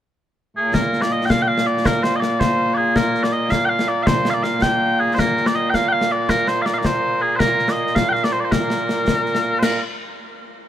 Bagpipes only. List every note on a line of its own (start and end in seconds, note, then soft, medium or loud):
0.57 9.80 A#2 medium
0.57 9.80 A#3 medium
0.57 0.74 G#4 medium
0.74 1.01 A#4 medium
1.01 1.12 D5 medium
1.12 1.25 D#5 medium
1.25 1.30 G5 medium
1.30 1.42 F5 loud
1.42 1.48 G5 medium
1.48 1.66 F5 loud
1.66 1.86 D5 medium
1.86 2.03 A#4 medium
2.03 2.16 C5 medium
2.16 2.20 D#5 medium
2.20 2.39 D5 medium
2.39 2.74 C5 medium
2.74 2.96 G#4 medium
2.74 2.77 D5 medium
2.96 3.23 A#4 loud
3.23 3.33 D5 medium
3.33 3.50 D#5 medium
3.50 3.65 F5 loud
3.65 3.69 G5 loud
3.69 3.88 F5 loud
3.88 4.03 D5 medium
4.03 4.30 C5 medium
4.03 4.06 F5 medium
4.30 4.43 D5 medium
4.30 4.34 F5 medium
4.43 4.62 F5 medium
4.62 5.00 G5 loud
5.00 5.14 G#4 medium
5.14 5.19 C5 medium
5.19 5.46 A#4 medium
5.46 5.55 D5 medium
5.55 5.70 D#5 medium
5.70 5.75 G5 medium
5.75 5.88 F5 loud
5.88 5.92 G5 loud
5.92 6.12 F5 loud
6.12 6.29 D5 medium
6.29 6.48 A#4 medium
6.48 6.62 C5 medium
6.62 6.74 D5 medium
6.62 6.66 F5 medium
6.74 6.78 F5 medium
6.78 6.85 D5 medium
6.85 7.22 C5 loud
7.22 7.36 G#4 medium
7.36 7.69 A#4 medium
7.36 7.39 C5 medium
7.70 7.75 D#5 medium
7.75 7.95 D#5 medium
7.95 8.09 F5 loud
8.09 8.24 F5 medium
8.09 8.13 G5 medium
8.24 8.32 D5 loud
8.32 8.40 C5 medium
8.40 8.44 D5 medium
8.44 8.51 C5 medium
8.51 9.59 A#4 medium
9.59 9.63 C5 medium
9.63 9.80 A#4 medium